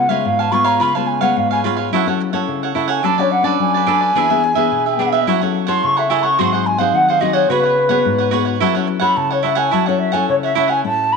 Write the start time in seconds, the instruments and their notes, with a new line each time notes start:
Already playing: nylon-string guitar C#3, flute F#5
0.09 nylon-string guitar G#3 B3 F4, cavaquinho B4 C#5 F5, flute E5
0.25 nylon-string guitar G#2, flute F5
0.39 cavaquinho B4 C#5 F5, flute A5
0.52 nylon-string guitar G#3 B3 F4, cavaquinho F4 B4 C#5 F5, flute C#6
0.64 cavaquinho B4 C#5 F5, flute A#5
0.80 nylon-string guitar C#3, cavaquinho F4 B4 C#5 F5, flute B5
0.95 nylon-string guitar G#3 B3 F4, cavaquinho B4 C#5 F5, flute A5
1.07 flute G#5
1.21 nylon-string guitar G#3 B3 F4, cavaquinho B4 C#5 F5, flute F#5
1.36 nylon-string guitar G#2, flute F5
1.51 cavaquinho B4 C#5 F5, flute G#5
1.64 nylon-string guitar G#3 B3 F4, cavaquinho F4 B4 C#5 F5
1.77 cavaquinho B4 C#5 F5
1.92 nylon-string guitar F#3 C#4 E4 A4, cavaquinho E4 A4 C#5 F#5
2.06 nylon-string guitar C#4 E4 A4, cavaquinho A4 C#5 F#5
2.20 muted cavaquinho stroke
2.33 nylon-string guitar C#4 E4 A4, cavaquinho A4 C#5 F#5
2.48 nylon-string guitar C#3
2.63 cavaquinho A4 C#5 F#5
2.75 nylon-string guitar C#4 E4 A4, cavaquinho E4 A4 C#5 F#5
2.88 cavaquinho A4 C#5 F#5, flute G#5
3.03 nylon-string guitar F#3 C#4 D4 A4, cavaquinho D4 A4 B4 D5, flute A5
3.18 nylon-string guitar C#4 D4 A4, cavaquinho A4 B4 D5, flute C#5
3.31 flute F#5
3.43 nylon-string guitar C#4 D4 A4, cavaquinho A4 B4 D5, flute A5
3.60 nylon-string guitar F#3, flute G#5
3.74 cavaquinho A4 B4 D5
3.87 nylon-string guitar C#4 D4 A4, cavaquinho D4 A4 B4 D5
4.01 cavaquinho A4 B4 D5
4.15 nylon-string guitar E3 B3 D4 G#4, cavaquinho D4 G#4 B4 E5
4.30 nylon-string guitar B3 D4 G#4, cavaquinho G#4 B4 E5
4.43 muted cavaquinho stroke
4.55 nylon-string guitar B3 D4 G#4, cavaquinho G#4 B4 E5
4.71 nylon-string guitar B2
4.86 cavaquinho G#4 B4 E5
4.99 nylon-string guitar B3 D4 G#4, cavaquinho D4 G#4 B4 E5
5.12 cavaquinho G#4 B4 E5
5.27 nylon-string guitar F#3 C#4 E4 A4, cavaquinho E4 A4 C#5 F#5
5.41 nylon-string guitar C#4 E4 A4, cavaquinho A4 C#5 F#5
5.67 nylon-string guitar C#4 E4 A4, cavaquinho A4 C#5 F#5, flute C6
5.84 nylon-string guitar C#3, flute C#6
5.97 cavaquinho A4 C#5 F#5, flute E5
6.10 nylon-string guitar C#4 E4 A4, cavaquinho E4 A4 C#5 F#5, flute G#5
6.23 cavaquinho A4 C#5 F#5, flute C#6
6.39 nylon-string guitar G#2 F#3 C4 D#4, cavaquinho F#4 G#4 C5 F#5, flute C6
6.53 cavaquinho G#4 C5 F#5
6.66 flute G#5, muted cavaquinho stroke
6.78 nylon-string guitar F#3 C4 D#4, cavaquinho G#4 C5 F#5, flute F5
6.94 nylon-string guitar D#3, flute F#5
7.08 cavaquinho G#4 C5 F#5, flute F5
7.21 nylon-string guitar F#3 C4 D#4, cavaquinho F#4 G#4 C5 F#5, flute D#5
7.33 cavaquinho G#4 C5 F#5, flute C#5
7.49 nylon-string guitar C#3 B3 F#4 G#4, cavaquinho F#4 B4 C#5 F#5, flute B4
7.63 cavaquinho B4 C#5 F#5
7.89 nylon-string guitar B3 F#4 G#4, cavaquinho B4 C#5 F#5
8.05 nylon-string guitar G#2
8.18 cavaquinho B4 C#5 F#5
8.31 nylon-string guitar B3 F#4 G#4, cavaquinho F#4 B4 C#5 F#5
8.45 cavaquinho B4 C#5 F#5
8.60 nylon-string guitar F#3 C#4 E4 A4, cavaquinho E4 A4 C#5 F#5
8.75 nylon-string guitar C#4 E4 A4, cavaquinho A4 C#5 F#5
8.87 muted cavaquinho stroke
9.00 nylon-string guitar C#4 E4 A4, cavaquinho A4 C#5 F#5, flute B5
9.17 nylon-string guitar C#3, flute A5
9.30 cavaquinho A4 C#5 F#5, flute C#5
9.43 nylon-string guitar C#4 E4 A4, cavaquinho E4 A4 C#5 F#5, flute E5
9.55 cavaquinho A4 C#5 F#5, flute G#5
9.71 nylon-string guitar F#3, cavaquinho E4 A4 C#5 F#5, flute A5
9.86 nylon-string guitar C#4 E4 A4, cavaquinho A4 C#5 F#5, flute C#5
9.99 flute E5
10.12 nylon-string guitar C#4 E4 A4, cavaquinho A4 C#5 F#5, flute G#5
10.29 nylon-string guitar C#3, flute C#5
10.43 cavaquinho A4 C#5 F#5, flute E5
10.55 nylon-string guitar C#4 E4 A4, cavaquinho E4 A4 C#5 F#5, flute E5
10.68 cavaquinho A4 C#5 F#5, flute G#5
10.84 nylon-string guitar A2 A3 C#4 E4, flute A5
11.12 flute B5